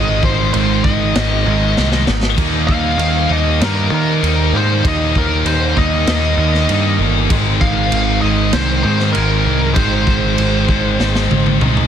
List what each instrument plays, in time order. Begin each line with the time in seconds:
Already playing: picked electric bass G#1, distorted electric guitar G#2 D#3 G#3 C4 D#4, tonewheel organ G#3 F4 A#4, lead electric guitar D#5
0.23 picked electric bass G#1, lead electric guitar C5, kick
0.53 picked electric bass G#1, distorted electric guitar G#2 D#3 G#3, lead electric guitar C5, crash
0.84 picked electric bass G#1, lead electric guitar D#5, kick
1.15 picked electric bass G#1, distorted electric guitar G#2 D#3 G#3 C4 D#4, snare, crash
1.46 picked electric bass G#1, distorted electric guitar G#2 D#3 G#3 C4 D#4
1.77 picked electric bass C2, snare
1.92 snare
2.07 picked electric bass G#1, snare
2.23 snare
2.37 picked electric bass D#2, distorted electric guitar D#3 G3 A#3 D#4, tonewheel organ D#4 F5, kick, crash
2.67 picked electric bass D#2, lead electric guitar F5, kick
2.98 picked electric bass D#2, crash
3.29 picked electric bass D#2, distorted electric guitar D#3 A#3 D#4, lead electric guitar D#5
3.61 picked electric bass G2, lead electric guitar A#4, snare, crash
3.90 picked electric bass D#3, distorted electric guitar D#3 G3 A#3 D#4
3.95 lead electric guitar A#4
4.21 picked electric bass D#2, distorted electric guitar D#3 G3 A#3 D#4, crash
4.53 picked electric bass G#2
4.57 lead electric guitar C5
4.84 picked electric bass D#2, distorted electric guitar D#3 G3 A#3 D#4, kick, crash
4.88 lead electric guitar D#5
5.15 picked electric bass D#2, lead electric guitar A#4, kick
5.45 picked electric bass D#2, lead electric guitar C5, crash
5.77 picked electric bass D#2, distorted electric guitar D#3 A#3 D#4, lead electric guitar D#5, kick
6.07 picked electric bass D#2, snare, crash
6.36 picked electric bass D#2, distorted electric guitar D#3 G3 A#3 D#4
6.55 snare
6.69 picked electric bass G2, distorted electric guitar D#3 G3 A#3 D#4, crash
6.99 picked electric bass G1
7.29 picked electric bass G#1, distorted electric guitar G#2 D#3 G#3 C4 D#4, tonewheel organ G#3 D#4, kick, crash
7.61 picked electric bass G#1, lead electric guitar F5, kick
7.92 picked electric bass G#1, crash
8.21 picked electric bass G#1, distorted electric guitar D#3 G#3, lead electric guitar D#5
8.25 distorted electric guitar G#2
8.53 picked electric bass C2, lead electric guitar C5, snare, crash
8.82 picked electric bass G#2, distorted electric guitar G#2 D#3 G#3 C4 D#4, lead electric guitar C5
9.00 snare
9.12 distorted electric guitar G#2 D#3 G#3 C4 D#4, lead electric guitar A#4, crash
9.16 picked electric bass G#1, distorted electric guitar D#3 G#3
9.46 picked electric bass C2
9.75 picked electric bass G#1, distorted electric guitar G#2 D#3 G#3 C4 D#4, lead electric guitar C5, kick, crash
9.79 tonewheel organ C5
10.07 picked electric bass G#1, kick
10.38 picked electric bass G#1, crash
10.69 picked electric bass G#1, distorted electric guitar G#2 D#3 G#3, kick
10.99 picked electric bass G#1, snare
11.15 snare
11.29 picked electric bass G#1, distorted electric guitar G#2 D#3 G#3 C4 D#4, high tom
11.46 high tom
11.61 picked electric bass C2, distorted electric guitar G#2 D#3 G#3 C4 D#4, mid tom
11.77 mid tom